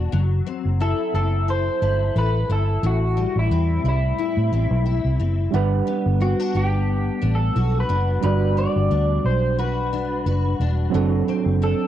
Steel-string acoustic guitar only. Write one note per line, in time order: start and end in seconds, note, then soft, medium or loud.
0.00 0.12 G3 medium
0.00 0.20 B3 medium
0.00 0.20 D4 medium
0.00 0.49 F#4 medium
0.12 2.83 F#3 medium
0.46 1.14 C4 medium
0.80 1.82 E4 medium
1.15 3.17 C4 medium
1.48 2.15 A4 medium
1.82 2.49 E4 medium
2.16 3.20 A4 medium
2.50 3.51 E4 medium
2.83 5.53 A2 medium
3.17 3.85 G3 medium
3.51 4.51 C4 medium
3.85 5.53 G3 medium
4.18 4.84 E4 medium
4.53 5.18 C4 medium
4.86 5.61 E4 medium
5.20 5.61 C4 medium
5.53 8.21 G3 medium
5.87 6.53 B3 medium
6.21 6.39 C4 medium
6.39 7.20 D4 medium
6.55 8.56 B3 medium
7.22 7.89 D4 medium
7.56 9.58 F#4 medium
7.89 8.91 D4 medium
8.23 10.93 G3 medium
8.57 9.24 B3 medium
8.91 9.92 D4 medium
9.58 10.26 F#4 medium
9.93 10.60 D4 medium
10.26 11.31 F#4 medium
10.60 11.31 D4 medium
10.94 11.87 F#3 medium
11.28 11.87 C4 medium
11.62 11.87 D4 medium